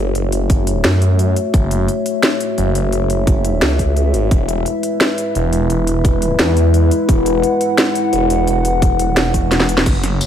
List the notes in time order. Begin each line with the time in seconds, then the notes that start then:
Already playing: F#1 A3 F#4 C#5 E5
0.15 F#1, closed hi-hat
0.32 closed hi-hat
0.50 F#1, kick, closed hi-hat
0.67 closed hi-hat
0.84 F#2, snare, closed hi-hat
1.02 closed hi-hat
1.19 closed hi-hat
1.36 closed hi-hat
1.54 F#1, kick, closed hi-hat
1.71 closed hi-hat
1.88 closed hi-hat
2.06 closed hi-hat
2.23 snare, closed hi-hat
2.40 closed hi-hat
2.58 F#1, closed hi-hat
2.75 F#1, closed hi-hat
2.93 F#1, closed hi-hat
3.10 closed hi-hat
3.27 F#1, kick, closed hi-hat
3.45 closed hi-hat
3.62 C#2, snare, closed hi-hat
3.79 kick, closed hi-hat
3.97 closed hi-hat
4.14 G#1, closed hi-hat
4.31 E1 G#3 E4 B4, kick, closed hi-hat
4.49 closed hi-hat
4.66 closed hi-hat
4.83 closed hi-hat
5.01 snare, closed hi-hat
5.18 closed hi-hat
5.35 E1, closed hi-hat
5.53 E1, closed hi-hat
5.70 E1, closed hi-hat
5.87 closed hi-hat
6.05 E1, kick, closed hi-hat
6.22 closed hi-hat
6.39 E2, snare, closed hi-hat
6.57 closed hi-hat
6.74 closed hi-hat
6.91 closed hi-hat
7.09 E1 F#5, kick, closed hi-hat
7.26 closed hi-hat
7.43 closed hi-hat
7.61 closed hi-hat
7.78 snare, closed hi-hat
7.95 closed hi-hat
8.13 E1, closed hi-hat
8.30 E1, closed hi-hat
8.47 E1, closed hi-hat
8.65 closed hi-hat
8.82 E1, kick, closed hi-hat
8.99 closed hi-hat
9.17 E1, snare, closed hi-hat, swell
9.34 kick, closed hi-hat
9.51 snare, closed hi-hat
9.60 snare
9.69 closed hi-hat
9.77 snare
9.86 F#1 A3 F#4 C#5 E5, kick, closed hi-hat, crash
10.04 snare, closed hi-hat
10.21 closed hi-hat, tambourine